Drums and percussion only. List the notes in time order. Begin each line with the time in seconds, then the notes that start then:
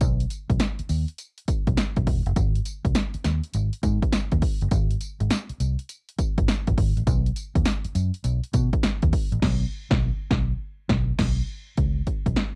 0.01 kick, closed hi-hat, tambourine
0.20 closed hi-hat
0.30 closed hi-hat, tambourine
0.50 kick, closed hi-hat
0.60 snare, closed hi-hat, tambourine
0.79 closed hi-hat
0.89 open hi-hat, tambourine
1.08 closed hi-hat
1.18 closed hi-hat, tambourine
1.38 closed hi-hat
1.48 kick, closed hi-hat, tambourine
1.67 kick, closed hi-hat
1.77 snare, closed hi-hat, tambourine
1.96 kick, closed hi-hat
2.07 kick, open hi-hat
2.26 closed hi-hat
2.36 kick, closed hi-hat, tambourine
2.55 closed hi-hat
2.65 closed hi-hat, tambourine
2.85 kick, closed hi-hat
2.95 snare, closed hi-hat, tambourine
3.14 closed hi-hat
3.24 snare, closed hi-hat, tambourine
3.44 closed hi-hat
3.54 closed hi-hat, tambourine
3.73 closed hi-hat
3.83 kick, closed hi-hat, tambourine
4.02 kick, closed hi-hat
4.12 snare, closed hi-hat, tambourine
4.32 kick, closed hi-hat
4.42 kick, open hi-hat
4.61 closed hi-hat
4.71 kick, closed hi-hat, tambourine
4.91 closed hi-hat
5.01 closed hi-hat, tambourine
5.20 closed hi-hat
5.30 snare, closed hi-hat, tambourine
5.49 closed hi-hat
5.60 closed hi-hat, tambourine
5.79 closed hi-hat
5.89 closed hi-hat, tambourine
6.09 closed hi-hat
6.19 kick, closed hi-hat, tambourine
6.38 kick, closed hi-hat
6.48 snare, closed hi-hat, tambourine
6.67 kick, closed hi-hat
6.78 kick, open hi-hat
6.97 closed hi-hat
7.07 kick, closed hi-hat, tambourine
7.26 closed hi-hat
7.36 closed hi-hat, tambourine
7.55 kick, closed hi-hat
7.65 snare, closed hi-hat, tambourine
7.85 closed hi-hat
7.95 closed hi-hat, tambourine
8.14 closed hi-hat
8.24 closed hi-hat, tambourine
8.44 closed hi-hat
8.53 kick, closed hi-hat, tambourine
8.73 kick, closed hi-hat
8.83 snare, closed hi-hat, tambourine
9.02 kick, closed hi-hat
9.13 kick, open hi-hat
9.32 closed hi-hat
9.42 kick, snare, crash
9.91 kick, snare
10.31 kick, snare
10.89 kick, snare
11.19 kick, snare, crash
11.77 kick, closed hi-hat
12.07 kick, closed hi-hat
12.26 kick, closed hi-hat
12.36 snare, closed hi-hat